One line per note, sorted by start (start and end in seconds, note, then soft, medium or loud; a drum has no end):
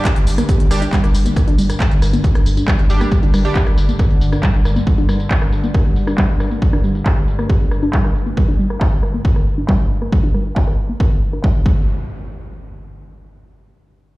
0.00 11.92 G2 medium
0.00 11.92 D3 medium
0.00 downlifter medium
0.05 kick loud
0.05 cross-stick medium
0.05 clap loud
0.05 closed hi-hat loud
0.05 tambourine soft
0.16 0.26 G1 medium
0.16 closed hi-hat medium
0.27 0.38 G1 loud
0.27 open hi-hat medium
0.27 tambourine medium
0.38 0.42 A#3 medium
0.38 cross-stick medium
0.38 closed hi-hat medium
0.38 tambourine soft
0.49 0.53 G4 medium
0.49 kick loud
0.49 closed hi-hat medium
0.49 tambourine soft
0.60 0.70 G1 medium
0.60 closed hi-hat medium
0.71 0.82 G1 loud
0.71 0.83 G3 loud
0.71 0.83 D4 medium
0.71 0.83 G4 loud
0.71 cross-stick medium
0.71 open hi-hat loud
0.71 tambourine medium
0.82 0.84 D4 medium
0.82 closed hi-hat medium
0.82 tambourine soft
0.93 0.99 G3 loud
0.93 kick loud
0.93 clap loud
0.93 closed hi-hat loud
0.93 tambourine soft
1.04 1.14 G1 medium
1.04 cross-stick medium
1.04 closed hi-hat medium
1.14 1.25 G1 loud
1.14 open hi-hat medium
1.14 tambourine medium
1.26 1.30 A#3 medium
1.26 closed hi-hat medium
1.26 tambourine soft
1.36 1.39 G3 medium
1.36 kick loud
1.36 cross-stick medium
1.36 closed hi-hat medium
1.36 tambourine soft
1.47 1.58 G1 medium
1.47 1.50 D4 loud
1.47 closed hi-hat medium
1.58 1.69 G1 loud
1.58 1.63 G3 medium
1.58 open hi-hat loud
1.58 tambourine medium
1.70 cross-stick medium
1.70 closed hi-hat medium
1.70 tambourine soft
1.80 kick loud
1.80 clap loud
1.80 closed hi-hat loud
1.91 2.02 G1 medium
1.91 closed hi-hat medium
2.02 2.13 G1 loud
2.02 cross-stick medium
2.02 open hi-hat loud
2.02 tambourine medium
2.13 2.18 A#3 medium
2.13 closed hi-hat medium
2.13 tambourine soft
2.24 2.28 G4 medium
2.24 kick loud
2.24 closed hi-hat medium
2.24 tambourine soft
2.35 2.45 G1 medium
2.35 cross-stick medium
2.35 closed hi-hat medium
2.46 2.57 G1 loud
2.46 open hi-hat loud
2.46 tambourine medium
2.57 2.60 D4 medium
2.57 closed hi-hat medium
2.57 tambourine soft
2.68 2.74 G3 loud
2.68 kick loud
2.68 cross-stick medium
2.68 clap loud
2.68 closed hi-hat loud
2.68 tambourine soft
2.79 2.89 G1 medium
2.79 closed hi-hat medium
2.90 3.01 G1 loud
2.90 3.10 G3 medium
2.90 3.10 D4 medium
2.90 3.10 G4 medium
2.90 open hi-hat loud
2.90 tambourine medium
3.01 3.05 A#3 medium
3.01 cross-stick medium
3.01 closed hi-hat medium
3.01 tambourine soft
3.12 3.14 G3 medium
3.12 kick loud
3.12 closed hi-hat medium
3.12 tambourine soft
3.23 3.33 G1 medium
3.23 3.25 D4 loud
3.23 closed hi-hat medium
3.34 3.44 G1 loud
3.34 3.38 G3 medium
3.34 cross-stick medium
3.34 open hi-hat loud
3.34 tambourine medium
3.45 3.57 G3 medium
3.45 3.57 D4 medium
3.45 3.57 G4 medium
3.45 closed hi-hat medium
3.45 tambourine soft
3.55 kick loud
3.55 clap loud
3.55 closed hi-hat medium
3.55 tambourine soft
3.67 3.77 G1 medium
3.67 cross-stick medium
3.67 closed hi-hat medium
3.77 3.88 G1 loud
3.77 open hi-hat loud
3.77 tambourine medium
3.88 3.93 A#3 medium
3.88 closed hi-hat medium
3.88 tambourine soft
3.99 4.04 G4 medium
3.99 kick loud
3.99 cross-stick medium
3.99 closed hi-hat medium
3.99 tambourine soft
4.10 4.21 G1 medium
4.10 closed hi-hat medium
4.21 4.32 G1 medium
4.21 open hi-hat loud
4.21 tambourine medium
4.32 4.35 D4 medium
4.32 cross-stick medium
4.32 closed hi-hat medium
4.32 tambourine soft
4.43 4.50 G3 loud
4.43 kick loud
4.43 clap loud
4.43 closed hi-hat medium
4.54 4.64 G1 medium
4.54 closed hi-hat medium
4.65 4.76 G1 loud
4.65 cross-stick medium
4.65 open hi-hat medium
4.65 tambourine medium
4.76 4.80 A#3 medium
4.76 closed hi-hat medium
4.76 tambourine soft
4.87 4.89 G3 medium
4.87 kick loud
4.87 closed hi-hat medium
4.98 5.01 D4 loud
4.98 closed hi-hat soft
5.09 5.13 G3 medium
5.09 cross-stick medium
5.09 open hi-hat loud
5.09 tambourine medium
5.20 closed hi-hat medium
5.20 tambourine soft
5.31 kick loud
5.31 clap loud
5.31 closed hi-hat medium
5.31 tambourine soft
5.42 cross-stick medium
5.42 closed hi-hat soft
5.52 open hi-hat medium
5.52 tambourine medium
5.64 5.68 A#3 medium
5.64 closed hi-hat medium
5.64 tambourine soft
5.74 5.79 G4 medium
5.74 kick loud
5.74 cross-stick medium
5.74 closed hi-hat medium
5.74 tambourine soft
5.85 closed hi-hat medium
5.96 open hi-hat loud
5.96 tambourine medium
6.07 6.10 D4 medium
6.07 cross-stick medium
6.07 closed hi-hat medium
6.07 tambourine soft
6.18 6.25 G3 loud
6.18 kick loud
6.18 clap loud
6.18 closed hi-hat medium
6.18 tambourine soft
6.29 closed hi-hat soft
6.40 cross-stick medium
6.40 open hi-hat medium
6.40 tambourine medium
6.51 6.55 A#3 medium
6.51 closed hi-hat medium
6.51 tambourine soft
6.62 6.65 G3 medium
6.62 kick loud
6.62 closed hi-hat medium
6.62 tambourine soft
6.73 6.76 D4 loud
6.73 cross-stick medium
6.73 closed hi-hat soft
6.84 6.88 G3 medium
6.84 open hi-hat loud
6.84 tambourine medium
6.95 closed hi-hat soft
6.95 tambourine soft
7.06 kick loud
7.06 cross-stick medium
7.06 clap loud
7.17 closed hi-hat medium
7.28 open hi-hat medium
7.28 tambourine medium
7.39 7.43 A#3 medium
7.39 cross-stick medium
7.39 closed hi-hat soft
7.39 tambourine soft
7.49 7.54 G4 medium
7.49 kick loud
7.49 tambourine soft
7.61 closed hi-hat soft
7.71 cross-stick medium
7.71 open hi-hat loud
7.71 tambourine medium
7.83 7.85 D4 medium
7.83 closed hi-hat medium
7.83 tambourine soft
7.93 8.00 G3 loud
7.93 kick loud
7.93 clap loud
8.04 cross-stick medium
8.04 closed hi-hat soft
8.15 open hi-hat medium
8.15 tambourine medium
8.26 8.31 A#3 medium
8.26 closed hi-hat medium
8.26 tambourine soft
8.37 8.40 G3 medium
8.37 kick loud
8.37 cross-stick medium
8.48 8.51 D4 loud
8.48 closed hi-hat medium
8.59 8.63 G3 medium
8.59 open hi-hat loud
8.59 tambourine medium
8.70 cross-stick medium
8.70 closed hi-hat medium
8.70 tambourine soft
8.81 kick loud
8.81 clap loud
8.92 closed hi-hat medium
9.03 cross-stick medium
9.03 open hi-hat medium
9.03 tambourine medium
9.14 9.18 A#3 medium
9.14 closed hi-hat medium
9.14 tambourine soft
9.25 9.29 G4 medium
9.25 kick loud
9.36 cross-stick medium
9.36 closed hi-hat medium
9.47 open hi-hat loud
9.47 tambourine medium
9.58 9.60 D4 medium
9.58 closed hi-hat medium
9.58 tambourine soft
9.69 9.75 G3 loud
9.69 kick loud
9.69 cross-stick medium
9.69 clap loud
9.80 closed hi-hat medium
9.90 open hi-hat medium
9.90 tambourine medium
10.02 10.06 A#3 medium
10.02 cross-stick medium
10.02 closed hi-hat medium
10.02 tambourine soft
10.12 10.15 G3 medium
10.12 kick loud
10.23 10.26 D4 loud
10.23 closed hi-hat medium
10.34 10.39 G3 medium
10.34 cross-stick medium
10.34 open hi-hat loud
10.34 tambourine medium
10.46 closed hi-hat medium
10.46 tambourine soft
10.56 kick loud
10.56 clap loud
10.67 cross-stick medium
10.78 open hi-hat medium
10.78 tambourine medium
10.89 10.94 A#3 medium
10.89 closed hi-hat medium
10.89 tambourine soft
11.00 11.04 G4 medium
11.00 kick loud
11.00 cross-stick medium
11.11 closed hi-hat medium
11.22 open hi-hat loud
11.22 tambourine medium
11.33 11.36 D4 medium
11.33 cross-stick medium
11.33 closed hi-hat medium
11.33 tambourine soft
11.44 11.50 G3 loud
11.44 kick loud
11.44 clap loud
11.66 11.86 G3 medium
11.66 kick loud
11.66 impact medium